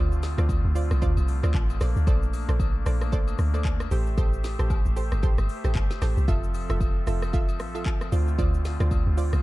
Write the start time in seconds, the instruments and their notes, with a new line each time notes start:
Already playing: log drum bass D2, pipe organ D3 A3 C4 F4, synth pluck F4 C5 D5
0.12 shaker
0.23 snare, open hi-hat, high agogo, shaker
0.38 log drum bass D2, synth pluck F4 C5 D5, cross-stick, shaker
0.49 kick, high agogo, shaker
0.65 log drum bass D2
0.75 synth pluck F4 C5 D5, open hi-hat, shaker
0.91 log drum bass C2, cross-stick, high agogo, shaker
1.02 log drum bass D2, synth pluck F4 C5 D5, kick, shaker
1.17 log drum bass C2, high agogo, shaker
1.28 open hi-hat, shaker
1.43 log drum bass D2, synth pluck F4 C5 D5, cross-stick, high agogo, shaker
1.54 log drum bass A1, kick, clap, low woodblock, shaker
1.70 high agogo, shaker
1.81 log drum bass A#1, pipe organ A3 A#3 D4, synth pluck A4 C5 D5, cross-stick, snare, open hi-hat, shaker
1.96 log drum bass D2, shaker
2.07 log drum bass A#1, synth pluck A4 C5 D5, kick, high agogo, shaker
2.23 shaker
2.33 open hi-hat, high agogo, shaker
2.48 log drum bass A#1, synth pluck A4 C5 D5, cross-stick, shaker
2.60 kick, high agogo, shaker
2.86 log drum bass A#1, synth pluck A4 C5 D5, cross-stick, open hi-hat, shaker
3.01 cross-stick, high agogo, shaker
3.12 synth pluck A4 C5 D5, kick, shaker
3.28 high agogo, shaker
3.39 log drum bass D2, cross-stick, open hi-hat, shaker
3.54 synth pluck A4 C5 D5, high agogo, shaker
3.65 kick, clap, low woodblock, shaker
3.80 cross-stick, high agogo, shaker
3.91 log drum bass A1, pipe organ A3 G4 C5 E5, synth pluck G4 A4 C5, open hi-hat, shaker
4.07 shaker
4.17 log drum bass A1, synth pluck G4 A4 C5, kick, high agogo, shaker
4.33 shaker
4.44 snare, open hi-hat, high agogo, shaker
4.59 log drum bass A1, synth pluck G4 A4 C5, cross-stick, shaker
4.70 kick, high agogo, low woodblock, shaker
4.86 log drum bass A1, shaker
4.96 synth pluck G4 A4 C5, open hi-hat, shaker
5.12 log drum bass G1, cross-stick, high agogo, shaker
5.23 log drum bass A1, synth pluck G4 A4 C5, kick, shaker
5.38 log drum bass G1, cross-stick, high agogo, shaker
5.49 open hi-hat, shaker
5.64 log drum bass A1, synth pluck G4 A4 C5, cross-stick, high agogo, shaker
5.75 log drum bass G1, kick, clap, low woodblock, shaker
5.91 snare, high agogo, shaker
6.02 log drum bass A1, synth pluck G4 A4 C5, cross-stick, snare, open hi-hat, shaker
6.17 log drum bass C2, shaker
6.28 log drum bass F1, pipe organ F3 C4 A4, synth pluck F4 A4 E5, kick, high agogo, shaker
6.44 shaker
6.54 open hi-hat, high agogo, shaker
6.69 log drum bass F1, synth pluck F4 A4 E5, cross-stick, shaker
6.81 kick, high agogo, shaker
7.07 log drum bass F1, synth pluck F4 A4 E5, cross-stick, open hi-hat, shaker
7.22 cross-stick, high agogo, shaker
7.33 synth pluck F4 A4 E5, kick, shaker
7.49 high agogo, shaker
7.60 log drum bass A1, cross-stick, open hi-hat, shaker
7.75 synth pluck F4 A4 E5, high agogo, shaker
7.86 kick, clap, low woodblock, shaker
8.01 cross-stick, high agogo, shaker
8.12 log drum bass D2, pipe organ D3 A3 F4, synth pluck F4 C5 D5, open hi-hat, shaker
8.28 shaker
8.38 log drum bass D2, synth pluck F4 C5 D5, kick, high agogo, shaker
8.54 shaker
8.65 snare, open hi-hat, high agogo, shaker
8.80 log drum bass D2, synth pluck F4 C5 D5, cross-stick, shaker
8.91 kick, high agogo, shaker
9.07 log drum bass D2
9.17 synth pluck F4 C5 D5, open hi-hat, shaker
9.33 log drum bass C2, cross-stick, high agogo, shaker